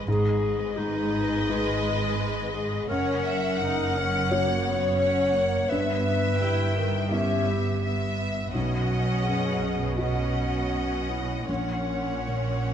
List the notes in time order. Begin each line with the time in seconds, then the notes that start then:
0.08 G#1 G#2 G#3 G#4 B4 D#5
0.77 G#3 D#4
1.49 G#3 D#4 B4
2.54 G#4
2.89 F#1 F#2 C#4 A#4 C#5 F#5
3.24 E5
3.60 C#3 D#4 F#5
3.94 C#4
4.30 A#3 C#4 F#4 C#5
4.67 B3
5.00 C#4 F#5
5.35 A#3
5.69 G1 G2 B3 B4 E5
6.41 G3 E4 G5
6.78 D#3
7.08 B3 C#4 E4 G4 E5
7.47 B3
7.83 B3 E5
8.53 B1 B2 C#4 F#4 D#5 F#5
9.24 F#2 G#4
9.95 C#4 F#4 D#5 F#5
11.10 E4
11.48 A#1 A#2 C#4 C#5 F#5
12.28 A#2